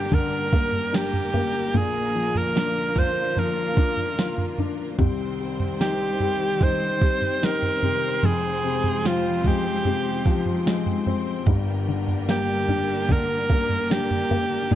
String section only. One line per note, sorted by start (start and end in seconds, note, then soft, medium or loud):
0.00 1.71 D3 medium
0.00 1.71 G3 medium
0.00 4.94 A#3 medium
0.00 4.95 A#4 medium
0.00 1.70 G5 medium
1.74 4.95 D3 medium
1.74 4.95 F3 medium
1.74 4.95 F4 medium
5.00 8.20 D#3 medium
5.00 8.20 G3 medium
5.00 11.44 C4 medium
5.00 11.44 C5 medium
5.00 14.68 G5 medium
8.23 11.44 F3 medium
8.23 11.44 G#3 medium
11.45 14.75 D3 medium
11.45 14.67 G3 medium
11.45 14.75 A#3 medium
11.45 14.75 A#4 medium
14.71 14.75 F3 medium
14.71 14.75 F4 medium